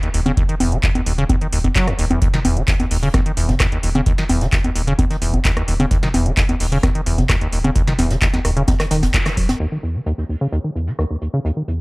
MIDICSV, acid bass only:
0, 0, Header, 1, 2, 480
1, 0, Start_track
1, 0, Tempo, 461538
1, 386, Time_signature, 4, 2, 24, 8
1, 12281, End_track
2, 0, Start_track
2, 0, Title_t, "Acid bass"
2, 0, Program_c, 0, 38
2, 29, Note_on_c, 0, 39, 76
2, 94, Note_off_c, 0, 39, 0
2, 146, Note_on_c, 0, 39, 79
2, 214, Note_off_c, 0, 39, 0
2, 269, Note_on_c, 0, 49, 97
2, 333, Note_off_c, 0, 49, 0
2, 386, Note_on_c, 0, 39, 97
2, 454, Note_off_c, 0, 39, 0
2, 509, Note_on_c, 0, 51, 77
2, 574, Note_off_c, 0, 51, 0
2, 626, Note_on_c, 0, 40, 75
2, 749, Note_on_c, 0, 51, 80
2, 765, Note_off_c, 0, 40, 0
2, 814, Note_off_c, 0, 51, 0
2, 866, Note_on_c, 0, 39, 103
2, 934, Note_off_c, 0, 39, 0
2, 990, Note_on_c, 0, 39, 79
2, 1054, Note_off_c, 0, 39, 0
2, 1106, Note_on_c, 0, 39, 73
2, 1174, Note_off_c, 0, 39, 0
2, 1229, Note_on_c, 0, 49, 102
2, 1294, Note_off_c, 0, 49, 0
2, 1346, Note_on_c, 0, 39, 104
2, 1414, Note_off_c, 0, 39, 0
2, 1470, Note_on_c, 0, 51, 78
2, 1534, Note_off_c, 0, 51, 0
2, 1586, Note_on_c, 0, 39, 77
2, 1654, Note_off_c, 0, 39, 0
2, 1709, Note_on_c, 0, 39, 104
2, 1748, Note_off_c, 0, 39, 0
2, 1826, Note_on_c, 0, 54, 103
2, 1950, Note_on_c, 0, 37, 105
2, 1966, Note_off_c, 0, 54, 0
2, 2014, Note_off_c, 0, 37, 0
2, 2067, Note_on_c, 0, 39, 100
2, 2134, Note_off_c, 0, 39, 0
2, 2190, Note_on_c, 0, 40, 76
2, 2286, Note_off_c, 0, 40, 0
2, 2306, Note_on_c, 0, 39, 104
2, 2374, Note_off_c, 0, 39, 0
2, 2429, Note_on_c, 0, 51, 77
2, 2494, Note_off_c, 0, 51, 0
2, 2546, Note_on_c, 0, 40, 78
2, 2669, Note_on_c, 0, 51, 81
2, 2685, Note_off_c, 0, 40, 0
2, 2733, Note_off_c, 0, 51, 0
2, 2785, Note_on_c, 0, 39, 98
2, 2853, Note_off_c, 0, 39, 0
2, 2909, Note_on_c, 0, 39, 82
2, 2973, Note_off_c, 0, 39, 0
2, 3025, Note_on_c, 0, 39, 73
2, 3094, Note_off_c, 0, 39, 0
2, 3148, Note_on_c, 0, 49, 98
2, 3213, Note_off_c, 0, 49, 0
2, 3265, Note_on_c, 0, 39, 105
2, 3333, Note_off_c, 0, 39, 0
2, 3389, Note_on_c, 0, 51, 76
2, 3453, Note_off_c, 0, 51, 0
2, 3505, Note_on_c, 0, 40, 77
2, 3629, Note_on_c, 0, 51, 79
2, 3644, Note_off_c, 0, 40, 0
2, 3693, Note_off_c, 0, 51, 0
2, 3745, Note_on_c, 0, 39, 106
2, 3814, Note_off_c, 0, 39, 0
2, 3869, Note_on_c, 0, 39, 76
2, 3933, Note_off_c, 0, 39, 0
2, 3985, Note_on_c, 0, 39, 80
2, 4054, Note_off_c, 0, 39, 0
2, 4109, Note_on_c, 0, 49, 94
2, 4173, Note_off_c, 0, 49, 0
2, 4226, Note_on_c, 0, 39, 104
2, 4294, Note_off_c, 0, 39, 0
2, 4349, Note_on_c, 0, 51, 74
2, 4413, Note_off_c, 0, 51, 0
2, 4465, Note_on_c, 0, 40, 77
2, 4588, Note_on_c, 0, 51, 83
2, 4604, Note_off_c, 0, 40, 0
2, 4653, Note_off_c, 0, 51, 0
2, 4705, Note_on_c, 0, 39, 101
2, 4774, Note_off_c, 0, 39, 0
2, 4828, Note_on_c, 0, 39, 84
2, 4893, Note_off_c, 0, 39, 0
2, 4945, Note_on_c, 0, 39, 69
2, 5014, Note_off_c, 0, 39, 0
2, 5069, Note_on_c, 0, 49, 104
2, 5133, Note_off_c, 0, 49, 0
2, 5185, Note_on_c, 0, 39, 108
2, 5254, Note_off_c, 0, 39, 0
2, 5308, Note_on_c, 0, 51, 77
2, 5373, Note_off_c, 0, 51, 0
2, 5426, Note_on_c, 0, 40, 75
2, 5549, Note_on_c, 0, 51, 79
2, 5565, Note_off_c, 0, 40, 0
2, 5614, Note_off_c, 0, 51, 0
2, 5665, Note_on_c, 0, 39, 100
2, 5734, Note_off_c, 0, 39, 0
2, 5788, Note_on_c, 0, 39, 76
2, 5853, Note_off_c, 0, 39, 0
2, 5905, Note_on_c, 0, 39, 76
2, 5974, Note_off_c, 0, 39, 0
2, 6029, Note_on_c, 0, 49, 100
2, 6094, Note_off_c, 0, 49, 0
2, 6145, Note_on_c, 0, 39, 102
2, 6214, Note_off_c, 0, 39, 0
2, 6269, Note_on_c, 0, 51, 77
2, 6333, Note_off_c, 0, 51, 0
2, 6386, Note_on_c, 0, 40, 76
2, 6509, Note_on_c, 0, 51, 84
2, 6525, Note_off_c, 0, 40, 0
2, 6574, Note_off_c, 0, 51, 0
2, 6625, Note_on_c, 0, 39, 98
2, 6694, Note_off_c, 0, 39, 0
2, 6749, Note_on_c, 0, 39, 81
2, 6814, Note_off_c, 0, 39, 0
2, 6866, Note_on_c, 0, 39, 74
2, 6934, Note_off_c, 0, 39, 0
2, 6989, Note_on_c, 0, 49, 108
2, 7054, Note_off_c, 0, 49, 0
2, 7106, Note_on_c, 0, 39, 104
2, 7174, Note_off_c, 0, 39, 0
2, 7229, Note_on_c, 0, 51, 78
2, 7294, Note_off_c, 0, 51, 0
2, 7346, Note_on_c, 0, 40, 75
2, 7470, Note_on_c, 0, 51, 76
2, 7486, Note_off_c, 0, 40, 0
2, 7534, Note_off_c, 0, 51, 0
2, 7586, Note_on_c, 0, 39, 101
2, 7654, Note_off_c, 0, 39, 0
2, 7709, Note_on_c, 0, 39, 82
2, 7774, Note_off_c, 0, 39, 0
2, 7826, Note_on_c, 0, 39, 80
2, 7894, Note_off_c, 0, 39, 0
2, 7949, Note_on_c, 0, 49, 101
2, 8014, Note_off_c, 0, 49, 0
2, 8066, Note_on_c, 0, 39, 104
2, 8134, Note_off_c, 0, 39, 0
2, 8189, Note_on_c, 0, 51, 74
2, 8254, Note_off_c, 0, 51, 0
2, 8306, Note_on_c, 0, 40, 77
2, 8429, Note_on_c, 0, 51, 83
2, 8445, Note_off_c, 0, 40, 0
2, 8493, Note_off_c, 0, 51, 0
2, 8546, Note_on_c, 0, 39, 105
2, 8614, Note_off_c, 0, 39, 0
2, 8669, Note_on_c, 0, 39, 78
2, 8733, Note_off_c, 0, 39, 0
2, 8786, Note_on_c, 0, 39, 74
2, 8854, Note_off_c, 0, 39, 0
2, 8909, Note_on_c, 0, 49, 101
2, 8974, Note_off_c, 0, 49, 0
2, 9025, Note_on_c, 0, 39, 112
2, 9094, Note_off_c, 0, 39, 0
2, 9149, Note_on_c, 0, 51, 76
2, 9213, Note_off_c, 0, 51, 0
2, 9266, Note_on_c, 0, 51, 104
2, 9390, Note_on_c, 0, 37, 83
2, 9406, Note_off_c, 0, 51, 0
2, 9486, Note_off_c, 0, 37, 0
2, 9506, Note_on_c, 0, 39, 101
2, 9547, Note_off_c, 0, 39, 0
2, 9630, Note_on_c, 0, 51, 78
2, 9668, Note_off_c, 0, 51, 0
2, 9746, Note_on_c, 0, 54, 77
2, 9869, Note_on_c, 0, 37, 101
2, 9885, Note_off_c, 0, 54, 0
2, 9933, Note_off_c, 0, 37, 0
2, 9985, Note_on_c, 0, 39, 100
2, 10054, Note_off_c, 0, 39, 0
2, 10109, Note_on_c, 0, 51, 77
2, 10173, Note_off_c, 0, 51, 0
2, 10226, Note_on_c, 0, 40, 73
2, 10349, Note_on_c, 0, 51, 76
2, 10364, Note_off_c, 0, 40, 0
2, 10413, Note_off_c, 0, 51, 0
2, 10466, Note_on_c, 0, 39, 96
2, 10534, Note_off_c, 0, 39, 0
2, 10589, Note_on_c, 0, 39, 81
2, 10653, Note_off_c, 0, 39, 0
2, 10706, Note_on_c, 0, 39, 71
2, 10774, Note_off_c, 0, 39, 0
2, 10829, Note_on_c, 0, 49, 97
2, 10893, Note_off_c, 0, 49, 0
2, 10945, Note_on_c, 0, 39, 101
2, 11014, Note_off_c, 0, 39, 0
2, 11069, Note_on_c, 0, 51, 73
2, 11134, Note_off_c, 0, 51, 0
2, 11186, Note_on_c, 0, 40, 74
2, 11309, Note_on_c, 0, 51, 75
2, 11325, Note_off_c, 0, 40, 0
2, 11373, Note_off_c, 0, 51, 0
2, 11426, Note_on_c, 0, 39, 98
2, 11494, Note_off_c, 0, 39, 0
2, 11550, Note_on_c, 0, 39, 71
2, 11614, Note_off_c, 0, 39, 0
2, 11666, Note_on_c, 0, 39, 75
2, 11734, Note_off_c, 0, 39, 0
2, 11790, Note_on_c, 0, 49, 99
2, 11854, Note_off_c, 0, 49, 0
2, 11906, Note_on_c, 0, 39, 98
2, 11974, Note_off_c, 0, 39, 0
2, 12030, Note_on_c, 0, 51, 74
2, 12094, Note_off_c, 0, 51, 0
2, 12147, Note_on_c, 0, 40, 74
2, 12281, Note_off_c, 0, 40, 0
2, 12281, End_track
0, 0, End_of_file